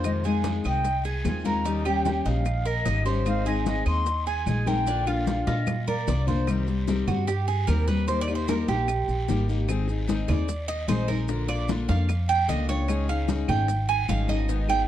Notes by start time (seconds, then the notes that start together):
Already playing: F2 C5
0.04 C3 D#3 G#3 C4 F4 D#5, high bongo, high conga, long guiro, claves, maracas
0.24 D#3 G#3 C4 F4 G#4, high conga, maracas
0.44 high bongo, high conga, short guiro, maracas
0.64 C2 D#5 G5, high bongo, high conga, short guiro, claves, maracas
0.84 muted steel-string acoustic guitar stroke, high bongo, high conga, long guiro, maracas
1.04 G#4 G#5, high bongo, high conga, maracas
1.24 D#2 D#3 G#3 C4 F4 G#5, high bongo, low bongo, high conga, short guiro, claves, maracas
1.44 D#3 G#3 C4 F4 A#4 A#5, high bongo, high conga, short guiro, maracas
1.64 D#3 G3 C#4 D#4 G4, high bongo, high conga, long guiro, maracas
1.85 G3 C#4 G4 G5, high conga, claves, maracas
2.05 high bongo, high conga, short guiro, maracas
2.25 A#1 D#4 F5, high bongo, high conga, short guiro, maracas
2.45 muted steel-string acoustic guitar stroke, high bongo, high conga, long guiro, claves, maracas
2.65 A#4 D#5, high bongo, high conga, maracas
2.85 G#1 D#3 G3 C#4 G4 D#5, high bongo, low bongo, short guiro, maracas
3.06 G3 C#4 G4 C5, high bongo, high conga, short guiro, maracas
3.25 D#3 G#3 C4 D#4 G#4 F5, high bongo, high conga, long guiro, claves, maracas
3.45 G#3 C4 D#4 G#4 D#5, high conga, maracas
3.66 D#5, high bongo, high conga, short guiro, maracas
3.86 D#2 D#5 C6, high bongo, high conga, short guiro, claves, maracas
4.06 muted steel-string acoustic guitar stroke, high bongo, high conga, long guiro, maracas
4.27 G#4 G#5, high bongo, high conga, maracas
4.46 A#1 G#3 C4 D#4 G#4 G#5, high bongo, low bongo, high conga, short guiro, claves, maracas
4.66 G#3 C4 D#4 G#4 A#4 G5, high bongo, high conga, short guiro, maracas
4.86 D3 A#3 D4 F4, high bongo, high conga, long guiro, maracas
5.06 A#3 D4 F4 F5, high conga, claves, maracas
5.27 high bongo, high conga, short guiro, maracas
5.47 A#2 F4 D#5, high bongo, high conga, short guiro, maracas
5.67 muted steel-string acoustic guitar stroke, high bongo, high conga, long guiro, claves, maracas
5.88 A#4 D5, high bongo, high conga, maracas
6.07 C2 D3 A#3 D4 F4 D5, high bongo, low bongo, low conga, short guiro, maracas
6.27 A#3 D4 F4 C5, high bongo, low conga, short guiro, maracas
6.47 C3 D#3 G3 C4 G4, high bongo, high conga, long guiro, claves, maracas
6.67 G3 C4 G4, high conga, maracas
6.87 C3 D#3 G3 C4 G4, high bongo, high conga, short guiro, maracas
7.07 G2 G3 C4 F#4 G4, high bongo, high conga, low conga, short guiro, claves, maracas
7.27 G4, muted steel-string acoustic guitar stroke, high bongo, high conga, long guiro, maracas
7.48 G#4, high bongo, high conga, maracas
7.67 D#2 C3 D#3 G3 C4 G4 A#4, high bongo, low bongo, high conga, short guiro, claves, maracas
7.87 G3 C4 G4 B4, high bongo, high conga, short guiro, maracas
8.07 D#3 G3 A#3 D#4 G4 C5, high bongo, high conga, long guiro, maracas
8.21 D5
8.28 A#3 D#4 G4, high conga, claves, maracas
8.35 C5
8.48 D#3 G3 A#3 D#4 G4 A#4, high bongo, high conga, short guiro, maracas
8.68 A#1 A#3 D#4 G4, high bongo, high conga, short guiro, maracas
8.88 muted steel-string acoustic guitar stroke, high bongo, high conga, long guiro, claves, maracas
9.08 A#1, high bongo, high conga, maracas
9.28 G#1 D#3 G3 A#3 D#4 G4, high bongo, low bongo, short guiro, maracas
9.48 A#3 D#4 G4, high bongo, high conga, short guiro, maracas
9.68 D#3 G#3 C4 D#4 G#4, high bongo, high conga, long guiro, claves, maracas
9.88 C4 D#4 G#4, high conga, maracas
10.07 D#3 G#3 C4 D#4 G#4, high bongo, high conga, short guiro, maracas
10.28 D#2 C4 D#4 G#4 D5, high bongo, high conga, low conga, short guiro, claves, maracas
10.48 muted steel-string acoustic guitar stroke, high bongo, high conga, long guiro, maracas
10.68 D#5, high bongo, high conga, maracas
10.88 A#1 D#3 G#3 C4 D#4 G#4 C5, high bongo, low bongo, high conga, short guiro, claves, maracas
11.08 C4 D#4 G#4 A#4, high bongo, high conga, short guiro, maracas
11.28 D3 A#3 D4 F4, high bongo, high conga, long guiro, maracas
11.48 A#3 D4 F4 D5, high conga, claves, maracas
11.68 D3 A#3 D4 F4, high bongo, high conga, short guiro, maracas
11.88 F2 A#3 D4 F4 F5, high bongo, high conga, short guiro, maracas
12.09 muted steel-string acoustic guitar stroke, high bongo, high conga, long guiro, claves, maracas
12.29 G5, high bongo, high conga, maracas
12.48 C#2 D3 A#3 D4 F4 D#5, high bongo, low bongo, high conga, short guiro, maracas
12.68 A#3 D4 F4 C#5, high bongo, high conga, short guiro, maracas
12.88 C#3 G#3 C#4 D#4 G#4, high bongo, high conga, long guiro, claves, maracas
13.08 C#4 D#4 G#4 F5, high conga, maracas
13.28 C#3 G#3 C#4 D#4 G#4, high bongo, high conga, short guiro, maracas
13.48 G#1 C#4 D#4 G#4 G5, high bongo, high conga, low conga, short guiro, claves, maracas
13.68 muted steel-string acoustic guitar stroke, high bongo, high conga, long guiro, maracas
13.89 G#5, high bongo, high conga, maracas
14.08 G#1 C#3 G#3 C#4 D#4 G#4 F5, high bongo, low bongo, high conga, short guiro, claves, maracas
14.28 C#4 D#4 G#4 D#5, high bongo, high conga, short guiro, maracas
14.48 D#3 G#3 B3 D#4 G#4, high bongo, high conga, long guiro, maracas
14.68 B3 D#4 G#4 G5, high conga, claves, maracas